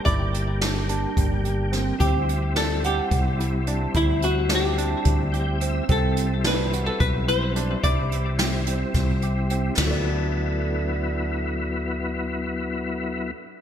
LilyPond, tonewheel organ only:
<<
  \new Staff \with { instrumentName = "Tonewheel organ" } { \time 7/8 \key d \mixolydian \tempo 4 = 108 r2. r8 | r2. r8 | r2 r8 g''8 e''8 | r2. r8 |
r2. r8 | r2. r8 | r2. r8 | }
  \new Staff \with { instrumentName = "Tonewheel organ" } { \time 7/8 \key d \mixolydian <g bes g'>2.~ <g bes g'>8 | <g c' e'>2.~ <g c' e'>8~ | <g c' e'>2.~ <g c' e'>8 | <g c' e'>2.~ <g c' e'>8~ |
<g c' e'>2.~ <g c' e'>8 | <fis b e'>2.~ <fis b e'>8~ | <fis b e'>2.~ <fis b e'>8 | }
>>